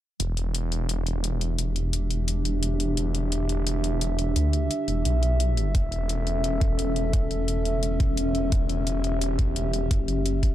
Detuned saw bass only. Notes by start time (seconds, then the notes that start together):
0.20 E1
1.59 E1
2.97 E1
4.36 D2
4.88 E1
5.05 B1
5.75 E1
7.13 E1
8.52 E1
9.91 F#1